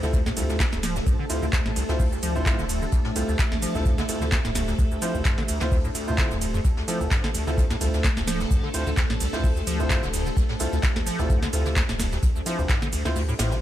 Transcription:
Already playing: A3 D4 G4 A4 C5 E5
0.03 D2 D3 C4 E4 F4 A4, snare, shaker
0.13 D2, kick, closed hi-hat, shaker
0.26 A2, snare, shaker
0.37 C2 D2 C4 E4 F4 A4, closed hi-hat, open hi-hat, ride, shaker
0.49 D2, snare, shaker
0.60 D2, kick, snare, clap, closed hi-hat, shaker
0.72 D1 D2, snare, shaker
0.83 F3, snare, closed hi-hat, open hi-hat, ride, shaker
0.96 D1, snare, shaker
1.06 D2 A2, kick, closed hi-hat, shaker
1.19 D3
1.30 D2 C4 E4 F4 C5, closed hi-hat, open hi-hat, ride, shaker
1.42 D2 D3, shaker
1.53 D2, kick, snare, clap, closed hi-hat, shaker
1.66 A1 A2, snare
1.76 C2, closed hi-hat, open hi-hat, ride, shaker
1.89 D2 C4 E4 F4 C5, snare, shaker
1.99 D2, kick, open hi-hat, shaker
2.12 D2, shaker
2.22 D2 F3, closed hi-hat, open hi-hat, ride, shaker
2.35 D1 C4 E4 F4 C5, shaker
2.46 A2, kick, snare, clap, closed hi-hat, shaker
2.59 D1 D3, snare, shaker
2.69 D2, closed hi-hat, open hi-hat, ride, shaker
2.82 D3, shaker
2.92 D2, kick, closed hi-hat, shaker
3.05 A2, snare
3.15 C2 C4 E4 F4 A4, closed hi-hat, open hi-hat, ride, shaker
3.29 D2, shaker
3.39 D2, kick, snare, clap, closed hi-hat, shaker
3.52 A1 D2, snare
3.62 F3, closed hi-hat, open hi-hat, ride, shaker
3.75 D1 D2 C4 E4 F4 A4, snare, shaker
3.86 A2, kick, closed hi-hat, shaker
3.98 D3, snare, shaker
4.09 D2 C4 E4 F4 A4, closed hi-hat, open hi-hat, ride, shaker
4.22 D3, snare, shaker
4.32 D2, kick, snare, clap, closed hi-hat, shaker
4.45 D1 A2, snare, shaker
4.55 C2, snare, closed hi-hat, open hi-hat, ride, shaker
4.67 D2, snare, shaker
4.79 D2, kick, closed hi-hat, shaker
4.91 D2, shaker
5.02 F3 C4 E4 F4 C5, closed hi-hat, open hi-hat, ride, shaker
5.15 D1 D2, shaker
5.25 A2, kick, snare, clap, closed hi-hat, shaker
5.38 A1 D3, snare
5.48 D2, closed hi-hat, open hi-hat, ride, shaker
5.60 D2 D3 C4 E4 F4 C5, snare, shaker
5.72 D2, kick, open hi-hat, shaker
5.84 A2, shaker
5.95 D2, open hi-hat, ride, shaker
6.08 D3 C4 E4 F4 C5, shaker
6.18 D3, kick, snare, clap, closed hi-hat, shaker
6.31 D1 D2, snare, shaker
6.41 D2, closed hi-hat, open hi-hat, ride, shaker
6.54 F2, shaker
6.64 D2 A3 A4, kick, closed hi-hat, shaker
6.77 D2, snare
6.88 F3 C4 E4 F4 A4, closed hi-hat, open hi-hat, ride, shaker
7.01 D1 D2, shaker
7.07 A5
7.11 A2, kick, snare, clap, closed hi-hat, shaker
7.24 A1 D3, snare
7.34 D2, closed hi-hat, open hi-hat, ride, shaker
7.47 D2 D3 C4 E4 F4 A4, snare, shaker
7.58 D2, kick, closed hi-hat, shaker
7.70 A2, snare, shaker
7.81 C2 D2 C4 E4 F4 A4, closed hi-hat, open hi-hat, ride, shaker
7.94 D2, snare, shaker
8.04 D2, kick, snare, clap, closed hi-hat, shaker
8.17 D1 D2, snare, shaker
8.27 F3, snare, closed hi-hat, open hi-hat, ride, shaker
8.40 D1, snare, shaker
8.51 D2 A2, kick, closed hi-hat, shaker
8.63 D3
8.74 D2 C4 E4 F4 C5, closed hi-hat, open hi-hat, ride, shaker
8.87 D2 D3, shaker
8.97 D2, kick, snare, clap, closed hi-hat, shaker
9.10 A1 A2, snare
9.20 C2, closed hi-hat, open hi-hat, ride, shaker
9.33 D2 C4 E4 F4 C5, snare, shaker
9.44 D2, kick, open hi-hat, shaker
9.56 D2, shaker
9.67 D2 F3, closed hi-hat, open hi-hat, ride, shaker
9.80 D1 C4 E4 F4 C5, shaker
9.90 A2, kick, snare, clap, closed hi-hat, shaker
10.03 D1 D3, snare, shaker
10.13 D2, closed hi-hat, open hi-hat, ride, shaker
10.26 D3, shaker
10.37 D2, kick, closed hi-hat, shaker
10.49 A2, snare
10.59 C2 C4 E4 F4 A4, closed hi-hat, open hi-hat, ride, shaker
10.73 D2, shaker
10.83 D2, kick, snare, clap, closed hi-hat, shaker
10.96 A1 D2, snare
11.06 F3, closed hi-hat, open hi-hat, ride, shaker
11.19 D1 D2 C4 E4 F4 A4, snare, shaker
11.30 A2, kick, closed hi-hat, shaker
11.42 D3, snare, shaker
11.52 D2 C4 E4 F4 A4, closed hi-hat, open hi-hat, ride, shaker
11.66 D3, snare, shaker
11.76 D2, kick, snare, clap, closed hi-hat, shaker
11.89 D1 A2, snare, shaker
12.00 C2, snare, closed hi-hat, open hi-hat, ride, shaker
12.12 D2, snare, shaker
12.22 D2, kick, closed hi-hat, shaker
12.36 D2, shaker
12.46 F3 C4 E4 F4 C5, closed hi-hat, open hi-hat, ride, shaker
12.59 D1 D2, shaker
12.69 A2, kick, snare, clap, closed hi-hat, shaker
12.82 A1 D3, snare, shaker
12.93 D2, closed hi-hat, open hi-hat, ride, shaker
13.05 D2 D3 C4 E4 F4 C5, snare, shaker
13.16 D2, open hi-hat, shaker
13.29 A2, shaker
13.39 A1 A2 C4 E4 F4 C5, snare, closed hi-hat, open hi-hat, ride, shaker
13.51 D3, snare, shaker

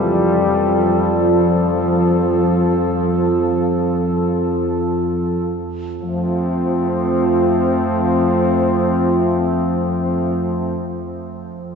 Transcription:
Already playing: F2 F3 G3 F4 A4
1.16 F3
6.01 F2 F3 A3 C4

